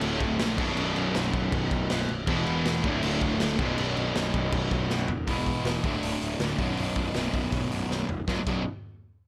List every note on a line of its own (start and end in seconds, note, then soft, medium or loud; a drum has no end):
0.00 0.19 D1 medium
0.00 0.57 D2 loud
0.00 0.58 A2 loud
0.00 0.58 D3 medium
0.00 0.58 F#3 loud
0.00 0.58 A3 loud
0.00 0.59 D4 loud
0.00 crash loud
0.20 0.37 D1 medium
0.20 kick loud
0.20 crash medium
0.39 0.59 A#1 loud
0.39 snare loud
0.39 crash loud
0.57 0.75 B0 medium
0.57 2.07 B1 loud
0.57 2.08 F#2 loud
0.57 2.08 B2 loud
0.57 2.08 F#3 loud
0.57 2.09 D4 loud
0.57 kick loud
0.57 crash loud
0.77 0.94 B0 loud
0.77 crash medium
0.96 1.12 B0 medium
0.96 crash medium
1.15 1.31 B0 loud
1.15 snare loud
1.15 crash medium
1.33 1.50 B0 medium
1.33 kick loud
1.33 crash medium
1.52 1.69 B0 medium
1.52 kick loud
1.52 crash medium
1.71 1.88 B0 loud
1.71 kick loud
1.71 crash medium
1.90 2.06 B0 loud
1.90 2.08 B1 medium
1.90 2.08 F#2 medium
1.90 2.09 B2 loud
1.90 snare loud
1.90 crash medium
2.08 2.25 B0 medium
2.08 crash medium
2.27 2.44 E1 loud
2.27 2.83 E2 loud
2.27 2.83 B2 loud
2.27 2.83 E3 loud
2.27 2.83 G#3 loud
2.27 2.84 B3 loud
2.27 2.84 E4 loud
2.27 kick loud
2.27 crash loud
2.46 2.63 E1 loud
2.46 crash medium
2.65 2.81 E1 loud
2.65 snare loud
2.65 crash medium
2.84 3.00 D1 medium
2.84 3.58 D2 medium
2.84 3.58 A2 loud
2.84 3.58 D3 loud
2.84 3.59 F#3 loud
2.84 3.59 A3 loud
2.84 3.59 D4 medium
2.84 kick loud
2.84 crash medium
3.03 3.19 D1 loud
3.03 crash loud
3.21 3.38 D1 medium
3.21 kick loud
3.21 crash medium
3.40 3.56 D1 loud
3.40 snare loud
3.40 crash loud
3.59 3.75 B0 loud
3.59 5.08 B1 medium
3.59 5.08 F#2 medium
3.59 5.09 B2 loud
3.59 5.09 F#3 loud
3.59 5.09 D4 loud
3.59 kick loud
3.59 crash medium
3.78 3.94 B0 loud
3.78 crash loud
3.96 4.12 B0 loud
3.96 crash medium
4.15 4.31 B0 loud
4.15 snare loud
4.15 crash medium
4.34 4.50 B0 loud
4.34 kick loud
4.34 crash medium
4.52 4.69 B0 loud
4.52 kick loud
4.52 crash loud
4.71 4.88 B0 medium
4.71 kick medium
4.71 crash medium
4.90 5.06 B0 loud
4.90 5.08 B1 medium
4.90 5.08 F#2 medium
4.90 5.09 B2 medium
4.90 snare medium
5.08 5.25 D#1 medium
5.08 floor tom loud
5.27 5.51 E1 medium
5.27 5.83 E2 medium
5.27 5.83 B2 medium
5.27 5.84 E3 medium
5.27 5.84 G#3 medium
5.27 5.84 B3 medium
5.27 5.84 E4 loud
5.27 kick loud
5.27 open hi-hat medium
5.46 kick medium
5.46 open hi-hat medium
5.65 5.77 E1 medium
5.65 snare loud
5.65 open hi-hat medium
5.83 5.96 D1 medium
5.83 6.58 D2 medium
5.83 6.58 A2 medium
5.83 6.58 D3 medium
5.83 6.61 F#3 loud
5.83 6.59 A3 medium
5.83 6.61 D4 medium
5.83 kick loud
5.83 open hi-hat medium
6.03 6.15 D1 loud
6.03 open hi-hat medium
6.21 6.33 D1 medium
6.21 open hi-hat medium
6.39 6.52 D1 medium
6.39 6.57 D2 medium
6.39 6.58 A2 medium
6.39 snare loud
6.39 open hi-hat medium
6.43 6.59 D3 medium
6.58 6.71 B0 medium
6.58 8.08 B1 loud
6.58 8.09 F#2 medium
6.58 8.09 B2 medium
6.58 8.10 F#3 loud
6.58 8.10 D4 medium
6.58 kick medium
6.58 open hi-hat medium
6.77 6.90 B0 medium
6.77 open hi-hat medium
6.96 7.08 B0 medium
6.96 kick medium
6.96 open hi-hat medium
7.14 7.27 B0 medium
7.14 7.70 B1 medium
7.14 7.71 F#2 medium
7.14 7.69 B2 medium
7.14 snare loud
7.14 open hi-hat medium
7.33 7.46 B0 medium
7.33 kick medium
7.33 open hi-hat medium
7.52 7.65 B0 medium
7.52 kick loud
7.52 open hi-hat medium
7.70 7.83 B0 medium
7.70 8.10 B1 medium
7.70 8.09 F#2 medium
7.70 8.08 B2 medium
7.70 open hi-hat medium
7.90 8.02 B0 medium
7.90 snare medium
8.09 8.21 B0 medium
8.09 floor tom medium
8.28 8.39 B0 medium
8.28 8.39 B1 medium
8.28 8.40 F#2 medium
8.28 8.40 B2 medium
8.28 8.40 F#3 loud
8.28 8.40 D4 loud
8.28 kick medium
8.28 snare medium
8.47 8.64 B0 medium
8.47 8.62 B1 medium
8.47 8.63 F#2 medium
8.47 8.63 B2 medium
8.47 8.63 F#3 medium
8.47 8.63 D4 medium
8.47 kick loud
8.47 crash medium